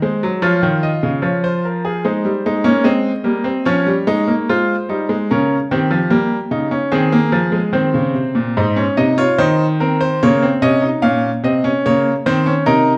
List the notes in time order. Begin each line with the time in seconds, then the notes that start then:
Already playing: D#4
0.02 G#3 C5
0.23 F#3
0.42 F3 F4 C#5
0.63 D#3
0.83 D#5
1.03 C#3
1.22 F3 C#5
1.44 C5
1.65 A#4
1.85 G#4
2.05 G#3 D#4 C5
2.25 G3
2.46 G#3 D#4
2.64 A#3 C#4
2.84 G#3 C4 D#5
3.24 G3 A#3
3.44 C4
3.65 F3 C#4 C#5
3.87 G3
4.07 G#3 D#4
4.28 A#3
4.49 G#3 F4 C5
4.89 G3 D#4
5.09 G#3
5.31 C#3 C#4 A#4
5.71 D#3 C4 G4
5.91 F3
6.10 G3 A#3
6.51 C#3 D#4
6.71 C#4
6.92 D#3 C4 G#4
7.12 A#3
7.32 F3
7.52 G#3
7.73 D#3 C4 C5
7.94 C#3
8.14 C3
8.35 A#2
8.57 G#2 D#4 C5
8.76 C#4
8.97 C3 D#4 D#5
9.18 F4 C#5
9.38 D#3 D#4 C5
9.80 C4 A#4
10.01 C5
10.23 C#3 A#3 C#5
10.42 C4
10.62 C3 C#4 D#5
10.82 D#4
11.02 A#2 C#4 F5
11.43 C3 C4 D#5
11.64 C#4
11.86 C#3 A#3 C#5
12.26 D#3 C4 C5
12.46 C#4
12.66 C3 D#4 A#4